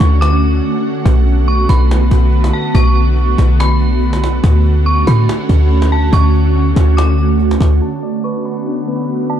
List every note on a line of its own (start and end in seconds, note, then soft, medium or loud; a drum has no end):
0.00 0.61 D2 loud
0.00 1.02 D3 medium
0.00 4.40 A3 medium
0.00 1.02 C#4 medium
0.00 4.40 F#4 medium
0.00 0.17 C#6 loud
0.00 cajon bass medium
0.00 cajon slap loud
0.21 0.61 D6 loud
0.21 cajon slap loud
0.42 cajon slap soft
1.06 1.66 B1 loud
1.06 4.40 D3 medium
1.06 4.40 B3 medium
1.06 cajon bass loud
1.27 cajon slap soft
1.48 1.68 C#6 medium
1.48 cajon slap soft
1.69 2.10 B1 loud
1.69 2.50 B5 medium
1.69 cajon bass medium
1.69 cajon slap medium
1.91 cajon slap loud
2.11 2.52 B1 loud
2.11 cajon bass loud
2.33 cajon slap soft
2.44 cajon slap loud
2.53 2.74 A5 medium
2.53 cajon slap soft
2.75 3.35 B1 loud
2.75 3.55 C#6 loud
2.75 cajon bass loud
2.96 cajon slap soft
3.17 cajon slap soft
3.38 4.40 B1 loud
3.38 cajon bass medium
3.38 cajon slap medium
3.60 4.40 B5 medium
3.60 cajon slap loud
3.80 cajon slap soft
4.02 cajon slap soft
4.13 cajon slap loud
4.24 cajon slap loud
4.44 5.04 D2 loud
4.44 7.78 D3 medium
4.44 7.78 A3 medium
4.44 7.78 C#4 medium
4.44 7.78 F#4 medium
4.44 cajon bass loud
4.65 cajon slap soft
4.86 5.06 C#6 medium
4.86 cajon slap soft
5.07 5.27 A2 loud
5.07 5.88 B5 medium
5.07 cajon bass medium
5.07 cajon slap loud
5.29 cajon slap loud
5.49 6.10 D2 loud
5.49 cajon bass medium
5.71 cajon slap soft
5.82 cajon slap loud
5.91 6.12 A5 medium
5.91 cajon slap soft
6.13 6.73 D2 loud
6.13 6.93 C#6 loud
6.13 cajon bass loud
6.34 cajon slap soft
6.55 cajon slap soft
6.76 7.57 D2 loud
6.76 cajon bass medium
6.76 cajon slap loud
6.97 7.37 D6 medium
6.97 cajon slap loud
7.18 cajon slap soft
7.40 cajon slap soft
7.51 cajon slap loud
7.60 7.81 D2 loud
7.60 cajon bass loud
7.60 cajon slap medium
7.81 9.40 D3 medium
7.81 9.40 A3 medium
7.81 9.40 B3 medium
7.81 9.40 F#4 medium
7.81 9.08 A5 medium
8.03 9.28 D5 medium
8.24 9.40 B4 medium
8.24 8.44 C#6 medium
8.45 9.26 B5 medium
8.67 9.40 D4 medium
8.88 9.40 B3 medium
9.29 9.40 D5 medium
9.29 9.40 A5 medium